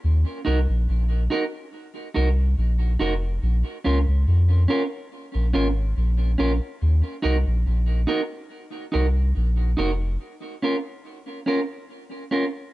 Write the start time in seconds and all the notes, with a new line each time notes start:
0.04 D#2
0.45 C2 D#4 F#4 A#4
0.69 A#1
0.89 A#1
1.30 D#4 F#4 A#4
2.14 C2 D#4 F#4 A#4
2.58 A#1
2.99 F1 D#4 F#4 A#4
3.43 A#1
3.84 C#2 C#4 F4 A#4
4.08 C#2
4.28 F2
4.68 C#4 F4 A#4
5.35 A#1
5.53 G#1 C#4 F4 A#4
5.97 A#1
6.38 A#1 C#4 F4 A#4
6.82 D#2
7.22 C2 D#4 F#4 A#4
7.47 A#1
7.67 A#1
8.07 D#4 F#4 A#4
8.92 C2 D#4 F#4 A#4
9.37 A#1
9.77 F1 D#4 F#4 A#4
10.62 C#4 F4 A#4
11.46 C#4 F4 A#4
12.31 C#4 F4 A#4